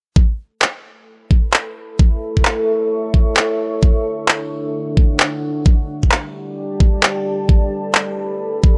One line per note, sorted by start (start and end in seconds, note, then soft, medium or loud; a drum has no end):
0.16 6.36 A4 medium
0.16 kick loud
0.55 6.40 E5 medium
0.55 4.24 B5 medium
0.62 clap loud
1.31 kick medium
1.47 4.45 C#6 medium
1.54 clap loud
1.99 kick loud
2.37 kick medium
2.45 clap loud
3.14 kick medium
3.37 clap loud
3.60 6.40 D4 medium
3.83 kick loud
4.28 clap loud
4.52 6.40 F#5 medium
4.97 kick loud
5.20 clap loud
5.66 7.49 G4 medium
5.66 kick loud
5.76 7.49 D5 medium
6.03 kick medium
6.12 8.78 A5 medium
6.12 clap loud
6.20 8.78 B5 medium
6.80 kick loud
7.03 clap loud
7.49 8.78 A4 medium
7.49 kick loud
7.67 8.78 E5 medium
7.95 clap loud
8.29 8.78 C#6 medium
8.64 kick medium